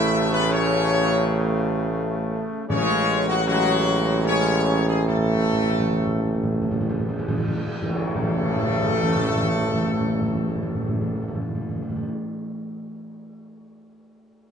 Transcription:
Already playing: tuba A1, trombone section C#3 A3, french horn section E4, trumpet section E5
0.32 french horn section B3, trumpet section B4
0.49 french horn section C#4, trumpet section C#5
2.68 tuba A1, timpani A2, trombone section C#3 G#3, french horn section C#4, trumpet section C#5
3.27 french horn section F#3, trumpet section F#4
3.45 trombone section C#3 G#3, french horn section F#3, trumpet section F#4
4.24 trombone section C#3 G#3, french horn section C#4, trumpet section C#5
4.84 french horn section G#3, trumpet section G#4
5.06 timpani A2, trombone section C#3 A3, french horn section A3, trumpet section A4
5.18 timpani A2
5.26 timpani A2
5.35 timpani A2
5.44 timpani A2
5.53 timpani A2
5.62 timpani A2
5.71 timpani A2
5.79 timpani A2
5.89 timpani A2
5.98 timpani A2
6.06 timpani A2
6.15 timpani A2
6.24 timpani A2
6.34 timpani A2
6.43 timpani A2
6.52 timpani A2
6.62 timpani A2
6.71 timpani A2
6.80 timpani A2
6.89 timpani A2
6.99 timpani A2
7.09 timpani A2
7.19 timpani A2
7.28 timpani A2
7.38 timpani A2
7.48 timpani A2
7.58 timpani A2
7.67 timpani A2
7.81 tuba A1, timpani A2, trombone section C#3 A3, french horn section A3, trumpet section A4, tam-tam
7.89 timpani A2
7.96 timpani A2
8.02 timpani A2
8.09 timpani A2
8.15 timpani A2
8.22 timpani A2
8.29 timpani A2
8.36 timpani A2
8.42 timpani A2
8.49 timpani A2
8.56 timpani A2
8.62 timpani A2
8.68 timpani A2
8.75 timpani A2
8.82 timpani A2
8.89 timpani A2
8.96 timpani A2
9.02 timpani A2
9.09 timpani A2
9.16 timpani A2
9.23 timpani A2
9.29 timpani A2
9.36 timpani A2
9.42 timpani A2
9.49 timpani A2
9.55 timpani A2
9.61 timpani A2
9.67 timpani A2
9.73 timpani A2
9.80 timpani A2
9.87 timpani A2
9.93 timpani A2
10.00 timpani A2
10.07 timpani A2
10.14 timpani A2
10.21 timpani A2
10.28 timpani A2
10.35 timpani A2
10.42 timpani A2
10.49 timpani A2
10.56 timpani A2
10.62 timpani A2
10.69 timpani A2
10.75 timpani A2
10.82 timpani A2
10.89 timpani A2
10.95 timpani A2
11.01 timpani A2
11.08 timpani A2
11.15 timpani A2
11.22 timpani A2
11.28 timpani A2
11.35 timpani A2
11.41 timpani A2
11.48 timpani A2
11.55 timpani A2
11.62 timpani A2
11.69 timpani A2
11.76 timpani A2
11.82 timpani A2
11.89 timpani A2
11.96 timpani A2
12.03 timpani A2

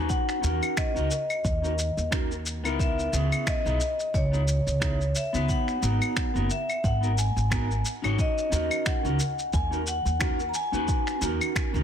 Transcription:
Already playing: clean electric guitar C#4 D#4 F#4 B4
0.09 vibraphone F#5, kick, shaker
0.29 finger snap, shaker
0.41 upright bass D#2, clean electric guitar C#4 D#4 F#4 A#4, shaker
0.63 claves, shaker
0.77 vibraphone D#5, finger snap, kick, shaker
0.94 upright bass C#2, clean electric guitar C#4 D#4 F#4 A#4, shaker
1.11 shaker
1.30 claves, shaker
1.44 upright bass D#2, kick, shaker
1.62 clean electric guitar C#4 D#4 F#4 A#4, shaker
1.79 shaker
1.97 upright bass D#2, shaker
2.11 clean electric guitar C#4 D#4 F#4 A#4, finger snap, kick, shaker
2.31 shaker
2.46 shaker
2.64 upright bass C#2, clean electric guitar B3 D#4 E4 A#4, claves, shaker
2.79 vibraphone E5, kick, shaker
2.99 shaker
3.12 upright bass C#2, clean electric guitar B3 C#4 E4 G#4, shaker
3.32 claves, shaker
3.47 vibraphone D#5, finger snap, kick, shaker
3.65 upright bass B1, clean electric guitar B3 D#4 E4 G#4, shaker
3.81 shaker
4.00 shaker
4.14 upright bass C#2, vibraphone C#5, kick, shaker
4.32 clean electric guitar B3 D#4 E4 G#4, shaker
4.48 shaker
4.67 upright bass C#2, shaker
4.80 clean electric guitar B3 D#4 E4 G#4, finger snap, kick, shaker
5.01 shaker
5.15 vibraphone E5, shaker
5.33 upright bass C#2, clean electric guitar B3 D#4 F#4 B4, shaker
5.49 vibraphone F#5, kick, shaker
5.68 finger snap, shaker
5.81 upright bass G#1, clean electric guitar B3 D#4 F#4 A#4, shaker
6.02 claves, shaker
6.17 finger snap, kick, shaker
6.34 upright bass F#1, clean electric guitar B3 D#4 F#4 A#4, shaker
6.50 vibraphone E5, shaker
6.70 claves, shaker
6.84 upright bass G#1, vibraphone F#5, kick, shaker
7.01 clean electric guitar B3 D#4 F#4 A#4, shaker
7.18 vibraphone G#5, shaker
7.36 upright bass G#1, shaker
7.50 clean electric guitar B3 D#4 F#4 A#4, finger snap, kick, shaker
7.71 shaker
7.85 shaker
8.02 upright bass G#1, clean electric guitar C#4 D#4 F#4 C#5, claves, shaker
8.19 vibraphone D#5, kick, shaker
8.38 shaker
8.50 upright bass D#2, clean electric guitar C#4 D#4 F#4 A#4, shaker
8.71 claves, shaker
8.86 vibraphone F#5, finger snap, kick, shaker
9.03 upright bass C#2, clean electric guitar C#4 D#4 F#4 A#4, shaker
9.20 shaker
9.39 shaker
9.53 upright bass D#2, vibraphone G#5, kick, shaker
9.71 clean electric guitar C#4 D#4 F#4 A#4, shaker
9.87 vibraphone F#5, shaker
10.05 upright bass D#2, shaker
10.19 clean electric guitar C#4 D#4 F#4 A#4, finger snap, kick, shaker
10.40 shaker
10.49 vibraphone A#5
10.54 vibraphone G#5, shaker
10.72 upright bass D#2, clean electric guitar C#4 D#4 F#4 B4, shaker
10.88 kick, shaker
11.07 finger snap, shaker
11.21 upright bass D#2, clean electric guitar C#4 D#4 F#4 A#4, shaker
11.41 claves, shaker
11.56 finger snap, kick, shaker
11.73 upright bass C#2, clean electric guitar C#4 D#4 F#4 A#4, shaker

